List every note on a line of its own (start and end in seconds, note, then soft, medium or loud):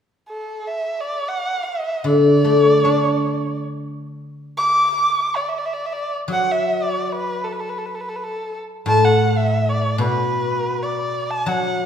0.29 0.69 A4 medium
0.67 1.02 E5 medium
1.00 1.30 D5 medium
1.28 1.64 F#5 medium
1.63 2.07 E5 medium
2.04 4.46 D3 soft
2.04 3.60 D5 medium
2.45 4.05 A3 soft
2.85 4.46 D4 soft
4.57 5.37 D6 medium
5.36 5.49 D5 medium
5.48 5.60 E5 medium
5.58 5.67 D5 medium
5.65 5.74 E5 medium
5.73 5.87 D5 medium
5.86 5.94 E5 medium
5.92 6.14 D5 medium
6.28 8.24 F#3 soft
6.32 6.53 F#5 medium
6.51 6.84 E5 medium
6.82 7.05 D5 medium
7.05 7.13 D5 soft
7.12 7.46 B4 medium
7.44 7.54 A4 medium
7.52 7.61 B4 medium
7.60 7.71 A4 medium
7.69 7.79 B4 medium
7.78 7.87 A4 medium
7.85 7.96 B4 soft
7.94 8.02 A4 medium
8.00 8.10 B4 medium
8.09 8.17 A4 medium
8.16 8.25 B4 medium
8.24 8.57 A4 medium
8.86 10.00 A2 medium
8.86 9.06 A5 medium
9.04 9.39 F#5 medium
9.37 9.70 E5 medium
9.69 10.00 D5 medium
9.98 11.86 B2 medium
9.98 10.84 B4 medium
10.82 11.32 D5 medium
11.30 11.49 A5 medium
11.46 11.86 F#3 medium
11.46 11.86 F#5 medium